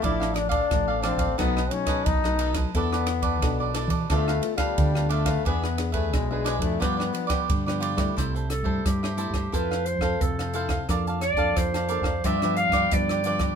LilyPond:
<<
  \new Staff \with { instrumentName = "Clarinet" } { \time 4/4 \key g \mixolydian \tempo 4 = 88 r1 | r1 | r1 | \key c \major r8 a'8 g'4 b'8 c''8 a'4 |
r8 d''8 c''4 e''8 f''8 d''4 | }
  \new Staff \with { instrumentName = "Cavaquinho" } { \time 4/4 \key g \mixolydian <d' a' d'' f''>16 <a' d'' f''>16 r16 <a' d'' f''>8 <a' d'' f''>16 <d' a' d'' f''>16 <a' d'' f''>16 <dis' a' b' dis''>16 <a' b' dis''>16 r16 <a' b' dis''>8 <a' b' dis''>16 <dis' a' b' dis''>16 <a' b' dis''>16 | <e' a' b' d''>16 <a' b' d''>16 r16 <a' b' d''>8 <a' b' d''>16 <e' a' b' d''>16 <a' b' d''>16 <d' a' b' f''>16 <a' b' f''>16 r16 <a' b' f''>8 <a' b' f''>16 <d' a' b' f''>16 <a' b' f''>16 | <d' gis' b' e''>16 <gis' b' e''>16 r16 <gis' b' e''>8 <gis' b' e''>16 <d' gis' b' e''>16 <gis' b' e''>16 <f' g' b' d''>16 <g' b' d''>16 r16 <g' b' d''>8 <g' b' d''>16 <f' g' b' d''>16 <g' b' d''>16 | \key c \major <e' a' c'' e''>16 <a' c'' e''>16 r16 <a' c'' e''>8 <a' c'' e''>16 <e' a' c'' e''>16 <a' c'' e''>16 <e' a' c'' f''>16 <a' c'' f''>16 r16 <a' c'' f''>8 <a' c'' f''>16 <e' a' c'' f''>16 <a' c'' f''>16 |
<bes' d'' f'' a''>16 <d'' f'' a''>16 r16 <d'' f'' a''>8 <d'' f'' a''>16 <bes' d'' f'' a''>16 <d'' f'' a''>16 <f' g' b' d''>16 <g' b' d''>16 r16 <g' b' d''>8 <g' b' d''>16 <f' g' b' d''>16 <g' b' d''>16 | }
  \new Staff \with { instrumentName = "Nylon-string guitar" } { \time 4/4 \key g \mixolydian << { <f a d'>8. r16 <f a d'>16 r16 <f a d'>16 r16 <fis a dis'>16 r16 <fis a dis'>8 r16 <fis a dis'>8. | <b d' a'>4 <b d' a'>8 <b d' a'>16 r16 <a b f'>8 <a b f'>8. <a b f'>8. | <b d' gis'>16 r16 <b d' gis'>8. <b d' gis'>8 <f b d'>8. <f b d'>8 r16 <f b d'>8 <g a e'>16~ | \key c \major <g a e'>8 r16 <g a e'>8. <g a e'>8 <c' e' a'>8 r16 <c' a'>8. <c' e' a'>8 |
<bes d' a'>8 r16 <bes d' a'>8. <bes d' a'>16 r16 <f b d'>16 <f b d'>8. <f b d'>8 <f b d'>8 | } \\ { a,4 a,4 b,4 fis,4 | e4 b,4 d4 d4 | e4 b,4 g,4 d4 | c4 g,4 f4 c4 |
f4 f4 g,4 d4 | } >> }
  \new Staff \with { instrumentName = "Trombone" } { \time 4/4 \key g \mixolydian e'8 d'16 d'8. c'8 b8 cis'8 dis'8. r16 | b4. r8 a8. g8. a8 | b8. a16 gis8. a16 b4 r4 | \key c \major r1 |
r1 | }
  \new Staff \with { instrumentName = "Fingered electric bass" } { \clef bass \time 4/4 \key g \mixolydian a,,4 a,,8. a,,16 b,,8 r8 b,,4 | e,4 b,,8. e16 d,8 r8 d,4 | e,4 b,,8. f,16 g,8 r8 g,4 | \key c \major c,8. g,16 g,8. g,16 f,8. f,16 f,4 |
f,8. f,16 f,8. f,16 g,8. g,16 g,4 | }
  \new DrumStaff \with { instrumentName = "Drums" } \drummode { \time 4/4 <bd cymr>16 ss16 <cymr ss>16 <bd cymr>16 <bd cymr ss>8 <cymr ss>16 <bd cymr>16 <bd cymr ss>16 ss16 cymr16 <bd cymr ss>16 <bd cymr>16 ss16 cymr16 <bd cymr ss>16 | <bd cymr>16 ss16 <cymr ss>16 <bd cymr>16 <bd cymr ss>8 <cymr ss>16 <bd cymr>16 <bd cymr ss>16 ss16 cymr16 <bd cymr ss>16 <bd cymr>16 ss16 cymr16 <bd cymr ss>16 | <bd cymr>16 ss16 <cymr ss>16 <bd cymr>16 <bd cymr ss>8 <cymr ss>16 <bd cymr>16 <bd cymr ss>16 ss16 cymr16 <bd cymr ss>16 <bd cymr>16 ss16 cymr16 <bd cymr ss>16 | <hh bd ss>16 hh16 <hh ss>16 bd16 <hh bd ss>16 ss16 hh16 <hh bd ss>16 <hh bd>16 ss16 hh16 <bd ss>16 <hh bd>16 <hh ss>16 hh16 <hh bd ss>16 |
<hh bd ss>16 hh16 <hh ss>16 <hh bd>16 <hh bd ss>16 <hh ss>16 hh16 <bd ss>16 <hh bd>16 <hh ss>16 hh16 <hh bd ss>16 <hh bd>16 <hh ss>16 hh16 <hh bd ss>16 | }
>>